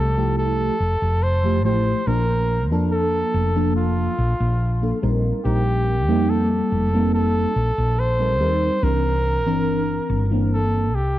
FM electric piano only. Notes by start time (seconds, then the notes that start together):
Already playing: F3 A3 E4 G4
0.17 F3 A3 E4 G4
1.43 F3 A3 E4 G4
1.64 F3 A3 E4 G4
2.07 F3 A#3 D4 A#4
2.71 F3 A#3 D4 A4
3.55 F3 A#3 D4 A4
4.82 F3 A#3 D4 A4
5.02 G3 C4 D#4 A#4
5.44 G3 C4 D#4 A#4
6.08 G3 A#3 C4 D#4
6.93 G3 A#3 C4 D#4
8.19 G3 C4 D#4 A#4
8.40 G3 C4 D#4 A#4
8.82 E3 C4 D4 A#4
9.46 E3 C4 D4 A#4
10.31 E3 A#3 C4 D4